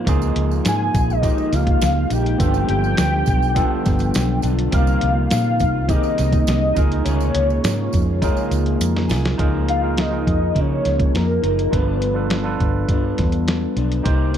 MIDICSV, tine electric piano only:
0, 0, Header, 1, 2, 480
1, 0, Start_track
1, 0, Tempo, 582637
1, 57, Time_signature, 4, 2, 24, 8
1, 11845, End_track
2, 0, Start_track
2, 0, Title_t, "Tine electric piano"
2, 0, Program_c, 0, 4
2, 0, Control_c, 0, 64, 127
2, 50, Note_on_c, 0, 58, 89
2, 58, Note_on_c, 0, 63, 81
2, 66, Note_on_c, 0, 65, 83
2, 67, Control_c, 0, 64, 0
2, 72, Note_on_c, 0, 68, 102
2, 232, Control_c, 0, 64, 127
2, 840, Note_off_c, 0, 58, 0
2, 844, Note_off_c, 0, 63, 0
2, 848, Note_off_c, 0, 65, 0
2, 851, Note_off_c, 0, 68, 0
2, 1005, Note_on_c, 0, 58, 70
2, 1012, Note_on_c, 0, 63, 64
2, 1018, Note_on_c, 0, 65, 65
2, 1026, Note_on_c, 0, 67, 75
2, 1797, Note_off_c, 0, 58, 0
2, 1801, Note_off_c, 0, 63, 0
2, 1804, Note_off_c, 0, 65, 0
2, 1808, Note_off_c, 0, 67, 0
2, 1962, Note_on_c, 0, 59, 79
2, 1967, Note_on_c, 0, 62, 69
2, 1972, Note_on_c, 0, 65, 68
2, 1983, Note_on_c, 0, 69, 85
2, 1989, Control_c, 0, 64, 0
2, 2129, Control_c, 0, 64, 127
2, 2756, Note_off_c, 0, 59, 0
2, 2758, Note_off_c, 0, 62, 0
2, 2761, Note_off_c, 0, 65, 0
2, 2766, Note_off_c, 0, 69, 0
2, 2920, Note_on_c, 0, 59, 88
2, 2926, Note_on_c, 0, 62, 76
2, 2932, Note_on_c, 0, 65, 81
2, 2941, Note_on_c, 0, 69, 89
2, 3715, Note_off_c, 0, 59, 0
2, 3718, Note_off_c, 0, 62, 0
2, 3721, Note_off_c, 0, 65, 0
2, 3726, Note_off_c, 0, 69, 0
2, 3880, Note_on_c, 0, 60, 78
2, 3888, Note_on_c, 0, 63, 72
2, 3893, Note_on_c, 0, 67, 69
2, 3902, Note_on_c, 0, 70, 91
2, 3906, Control_c, 0, 64, 0
2, 4045, Control_c, 0, 64, 127
2, 4675, Note_off_c, 0, 60, 0
2, 4679, Note_off_c, 0, 63, 0
2, 4681, Note_off_c, 0, 67, 0
2, 4686, Note_off_c, 0, 70, 0
2, 4843, Note_on_c, 0, 60, 71
2, 4849, Note_on_c, 0, 63, 63
2, 4854, Note_on_c, 0, 67, 66
2, 4862, Note_on_c, 0, 68, 63
2, 4913, Note_off_c, 0, 68, 0
2, 4914, Note_on_c, 0, 70, 74
2, 5549, Note_off_c, 0, 63, 0
2, 5559, Note_on_c, 0, 63, 81
2, 5569, Note_on_c, 0, 65, 79
2, 5570, Note_off_c, 0, 60, 0
2, 5572, Note_off_c, 0, 70, 0
2, 5574, Note_on_c, 0, 68, 75
2, 5576, Note_off_c, 0, 67, 0
2, 5582, Note_on_c, 0, 70, 90
2, 5588, Control_c, 0, 64, 0
2, 5751, Control_c, 0, 64, 127
2, 6355, Note_off_c, 0, 63, 0
2, 6360, Note_off_c, 0, 65, 0
2, 6362, Note_off_c, 0, 68, 0
2, 6366, Note_off_c, 0, 70, 0
2, 6767, Note_on_c, 0, 63, 81
2, 6771, Note_on_c, 0, 65, 74
2, 6783, Note_on_c, 0, 68, 76
2, 6788, Note_on_c, 0, 70, 92
2, 7558, Note_off_c, 0, 63, 0
2, 7561, Note_off_c, 0, 65, 0
2, 7567, Note_off_c, 0, 68, 0
2, 7569, Note_off_c, 0, 70, 0
2, 7724, Note_on_c, 0, 63, 82
2, 7731, Note_on_c, 0, 65, 77
2, 7738, Note_on_c, 0, 68, 77
2, 7743, Note_on_c, 0, 70, 94
2, 7747, Control_c, 0, 64, 0
2, 7866, Control_c, 0, 64, 127
2, 8025, Note_off_c, 0, 63, 0
2, 8029, Note_off_c, 0, 65, 0
2, 8032, Note_off_c, 0, 68, 0
2, 8035, Note_off_c, 0, 70, 0
2, 8084, Note_on_c, 0, 63, 71
2, 8090, Note_on_c, 0, 65, 64
2, 8099, Note_on_c, 0, 68, 64
2, 8104, Note_on_c, 0, 70, 82
2, 8287, Note_off_c, 0, 63, 0
2, 8290, Note_off_c, 0, 65, 0
2, 8295, Note_off_c, 0, 68, 0
2, 8297, Note_off_c, 0, 70, 0
2, 8327, Note_on_c, 0, 63, 67
2, 8331, Note_on_c, 0, 65, 60
2, 8343, Note_on_c, 0, 68, 63
2, 8346, Note_on_c, 0, 70, 74
2, 9119, Note_off_c, 0, 63, 0
2, 9121, Note_off_c, 0, 65, 0
2, 9127, Note_off_c, 0, 68, 0
2, 9128, Note_off_c, 0, 70, 0
2, 9642, Note_on_c, 0, 62, 73
2, 9648, Note_on_c, 0, 65, 68
2, 9656, Note_on_c, 0, 69, 69
2, 9663, Note_on_c, 0, 71, 77
2, 9670, Control_c, 0, 64, 0
2, 9799, Control_c, 0, 64, 127
2, 9945, Note_off_c, 0, 62, 0
2, 9948, Note_off_c, 0, 65, 0
2, 9952, Note_off_c, 0, 69, 0
2, 9955, Note_off_c, 0, 71, 0
2, 10002, Note_on_c, 0, 62, 70
2, 10009, Note_on_c, 0, 65, 63
2, 10017, Note_on_c, 0, 69, 67
2, 10020, Note_on_c, 0, 71, 83
2, 10207, Note_off_c, 0, 62, 0
2, 10210, Note_off_c, 0, 65, 0
2, 10214, Note_off_c, 0, 69, 0
2, 10216, Note_off_c, 0, 71, 0
2, 10245, Note_on_c, 0, 62, 81
2, 10252, Note_on_c, 0, 65, 79
2, 10259, Note_on_c, 0, 69, 80
2, 10267, Note_on_c, 0, 71, 90
2, 11038, Note_off_c, 0, 62, 0
2, 11042, Note_off_c, 0, 65, 0
2, 11045, Note_off_c, 0, 69, 0
2, 11050, Note_off_c, 0, 71, 0
2, 11561, Note_on_c, 0, 63, 89
2, 11568, Note_on_c, 0, 67, 83
2, 11575, Note_on_c, 0, 70, 77
2, 11579, Note_on_c, 0, 72, 100
2, 11588, Control_c, 0, 64, 0
2, 11720, Control_c, 0, 64, 127
2, 11845, Note_off_c, 0, 63, 0
2, 11845, Note_off_c, 0, 67, 0
2, 11845, Note_off_c, 0, 70, 0
2, 11845, Note_off_c, 0, 72, 0
2, 11845, End_track
0, 0, End_of_file